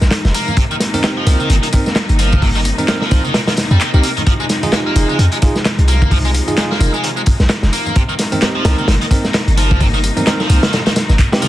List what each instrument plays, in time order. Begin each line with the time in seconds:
Already playing: string section C3 F3 G#3 D#4
0.01 808-style bass A#1, snare, tambourine
0.11 snare, clap, closed hi-hat, tambourine
0.25 808-style bass F1, snare, tambourine
0.34 overdriven electric guitar A#3, closed hi-hat, open hi-hat, tambourine
0.48 tambourine, low conga
0.57 string section C3 G3 A#3, overdriven electric guitar C3, kick, closed hi-hat, tambourine
0.71 overdriven electric guitar D#3, tambourine
0.80 snare, closed hi-hat, open hi-hat, tambourine
0.94 tine electric piano C4 D#4 A#4, open hi-hat, tambourine, low conga
1.04 overdriven electric guitar D#3, tine electric piano C4 D#4 G4, snare, clap, closed hi-hat, tambourine
1.17 overdriven electric guitar F3
1.27 808-style bass C2, tine electric piano C4 D#4 A#4, closed hi-hat, open hi-hat, tambourine, low conga
1.40 overdriven electric guitar D#3, tambourine, high conga
1.50 808-style bass G1, overdriven electric guitar A#2, closed hi-hat, tambourine
1.63 overdriven electric guitar D#3, closed hi-hat, tambourine
1.73 tine electric piano C4 D#4 A#4, kick, closed hi-hat, open hi-hat, tambourine
1.86 snare, tambourine
1.96 snare, clap, closed hi-hat, tambourine
2.09 808-style bass G1, closed hi-hat, tambourine
2.19 overdriven electric guitar F3, closed hi-hat, open hi-hat, tambourine
2.32 kick, tambourine, high conga, low conga
2.42 overdriven electric guitar C3, kick, open hi-hat, tambourine
2.55 overdriven electric guitar D#3, tambourine
2.65 closed hi-hat, open hi-hat, tambourine
2.78 tine electric piano C4 D#4 A#4, open hi-hat, tambourine, low conga
2.88 overdriven electric guitar D#3, tine electric piano C4 D#4 A#4, snare, clap, closed hi-hat, tambourine
3.01 overdriven electric guitar F3, snare
3.11 808-style bass C2, tine electric piano C4 D#4 C5, kick, closed hi-hat, open hi-hat, tambourine, low conga
3.25 overdriven electric guitar D#3, tambourine, high conga
3.34 overdriven electric guitar A#2, snare, closed hi-hat, tambourine
3.47 overdriven electric guitar D#3, snare, closed hi-hat, tambourine
3.57 snare, closed hi-hat, open hi-hat, tambourine
3.71 808-style bass F2, overdriven electric guitar G3, tambourine
3.81 overdriven electric guitar D#3, clap, closed hi-hat, tambourine
3.94 808-style bass C2, overdriven electric guitar A#3, tine electric piano C4 D#4 G4, tambourine
4.03 overdriven electric guitar A#3, closed hi-hat, open hi-hat, tambourine
4.17 overdriven electric guitar D#3, closed hi-hat, tambourine, low conga
4.26 string section F3 G#3, overdriven electric guitar F3, kick, closed hi-hat, tambourine
4.40 overdriven electric guitar G#3, tambourine
4.49 snare, closed hi-hat, open hi-hat, tambourine
4.63 tine electric piano D#4 F4 G#4, open hi-hat, tambourine, low conga
4.73 overdriven electric guitar G#3, tine electric piano D#4 F4 G4, snare, clap, closed hi-hat, tambourine
4.86 overdriven electric guitar A#3
4.96 808-style bass F1, tine electric piano D#4 F4 G#4, closed hi-hat, open hi-hat, tambourine, low conga
5.09 overdriven electric guitar G#3, tambourine, high conga
5.19 808-style bass F2, overdriven electric guitar D#3, closed hi-hat, tambourine
5.32 overdriven electric guitar G#3, closed hi-hat, tambourine
5.42 tine electric piano D#4 F4 G#4, kick, closed hi-hat, open hi-hat, tambourine
5.55 snare, tambourine
5.65 snare, clap, closed hi-hat, tambourine
5.78 808-style bass C2, closed hi-hat, tambourine
5.88 overdriven electric guitar A#3, closed hi-hat, open hi-hat, tambourine
6.02 kick, tambourine, high conga, low conga
6.11 overdriven electric guitar F3, kick, open hi-hat, tambourine
6.25 overdriven electric guitar G#3, tambourine
6.34 closed hi-hat, open hi-hat, tambourine
6.48 tine electric piano D#4 F4 G#4, open hi-hat, tambourine, low conga
6.57 overdriven electric guitar G#3, tine electric piano D#4 F4 G#4, snare, clap, closed hi-hat, tambourine
6.71 overdriven electric guitar A#3, snare
6.80 808-style bass F1, tine electric piano D#4 F4 A#4, open hi-hat, tambourine, low conga
6.94 overdriven electric guitar G#3, tambourine
7.04 overdriven electric guitar D#3, closed hi-hat, tambourine
7.17 overdriven electric guitar G#3, tambourine
7.26 kick, closed hi-hat, open hi-hat, tambourine
7.40 808-style bass A#1, snare, tambourine
7.49 snare, clap, closed hi-hat, tambourine
7.63 808-style bass F1, snare, tambourine
7.73 overdriven electric guitar A#3, closed hi-hat, open hi-hat, tambourine
7.86 tambourine, low conga
7.96 string section C3 G3 A#3 D#4, overdriven electric guitar C3, kick, closed hi-hat, tambourine
8.09 overdriven electric guitar D#3, tambourine
8.19 snare, closed hi-hat, open hi-hat, tambourine
8.32 tine electric piano C4 D#4 A#4, open hi-hat, tambourine, low conga
8.42 overdriven electric guitar D#3, tine electric piano G4, snare, clap, closed hi-hat, tambourine
8.56 overdriven electric guitar F3
8.65 808-style bass C2, tine electric piano C4 D#4 A#4, snare, closed hi-hat, open hi-hat, tambourine, low conga
8.78 overdriven electric guitar D#3, tambourine, high conga
8.88 808-style bass G1, overdriven electric guitar A#2, snare, closed hi-hat, tambourine
9.01 overdriven electric guitar D#3, closed hi-hat, tambourine
9.11 tine electric piano C4 D#4 A#4, kick, closed hi-hat, open hi-hat, tambourine
9.24 snare, tambourine
9.34 snare, clap, closed hi-hat, tambourine
9.48 808-style bass G1, closed hi-hat, tambourine
9.57 overdriven electric guitar F3, closed hi-hat, open hi-hat, tambourine
9.70 kick, tambourine, high conga, low conga
9.80 overdriven electric guitar C3, kick, open hi-hat, tambourine
9.94 overdriven electric guitar D#3, tambourine
10.04 closed hi-hat, open hi-hat, tambourine
10.17 tine electric piano C4 D#4 A#4, open hi-hat, tambourine, low conga
10.27 overdriven electric guitar D#3, tine electric piano C4 D#4 A#4, snare, clap, closed hi-hat, tambourine
10.40 overdriven electric guitar F3, snare, tambourine
10.49 808-style bass C2, tine electric piano C4 D#4 C5, closed hi-hat, open hi-hat, tambourine, low conga
10.63 overdriven electric guitar D#3, snare, closed hi-hat, tambourine, high conga
10.73 overdriven electric guitar A#2, snare, closed hi-hat, tambourine
10.86 overdriven electric guitar D#3, snare, closed hi-hat, tambourine
10.96 snare, closed hi-hat, open hi-hat, tambourine
11.09 808-style bass G1, snare, tambourine
11.18 kick, clap, closed hi-hat, tambourine
11.32 tine electric piano C4 D#4 G4, snare, closed hi-hat, tambourine
11.42 overdriven electric guitar F3, snare, open hi-hat, tambourine, high conga